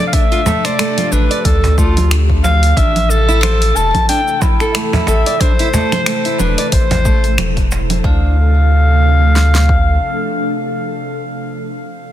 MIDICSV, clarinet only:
0, 0, Header, 1, 2, 480
1, 0, Start_track
1, 0, Key_signature, -1, "minor"
1, 0, Tempo, 659341
1, 95, Time_signature, 4, 2, 24, 8
1, 8826, End_track
2, 0, Start_track
2, 0, Title_t, "Clarinet"
2, 0, Program_c, 0, 71
2, 52, Note_on_c, 0, 77, 81
2, 95, Note_on_c, 0, 76, 126
2, 106, Note_off_c, 0, 77, 0
2, 473, Note_on_c, 0, 74, 104
2, 484, Note_off_c, 0, 76, 0
2, 815, Note_on_c, 0, 71, 98
2, 826, Note_off_c, 0, 74, 0
2, 1056, Note_on_c, 0, 69, 112
2, 1067, Note_off_c, 0, 71, 0
2, 1290, Note_off_c, 0, 69, 0
2, 1294, Note_on_c, 0, 65, 99
2, 1564, Note_off_c, 0, 65, 0
2, 1775, Note_on_c, 0, 77, 110
2, 2016, Note_on_c, 0, 76, 119
2, 2027, Note_off_c, 0, 77, 0
2, 2257, Note_on_c, 0, 69, 119
2, 2268, Note_off_c, 0, 76, 0
2, 2738, Note_on_c, 0, 81, 101
2, 2749, Note_off_c, 0, 69, 0
2, 2971, Note_off_c, 0, 81, 0
2, 2976, Note_on_c, 0, 79, 115
2, 3216, Note_on_c, 0, 64, 103
2, 3227, Note_off_c, 0, 79, 0
2, 3698, Note_on_c, 0, 76, 114
2, 3709, Note_off_c, 0, 64, 0
2, 3934, Note_on_c, 0, 72, 116
2, 3944, Note_off_c, 0, 76, 0
2, 4655, Note_on_c, 0, 71, 98
2, 4666, Note_off_c, 0, 72, 0
2, 4889, Note_off_c, 0, 71, 0
2, 4893, Note_on_c, 0, 72, 109
2, 5585, Note_off_c, 0, 72, 0
2, 5855, Note_on_c, 0, 77, 99
2, 8024, Note_off_c, 0, 77, 0
2, 8826, End_track
0, 0, End_of_file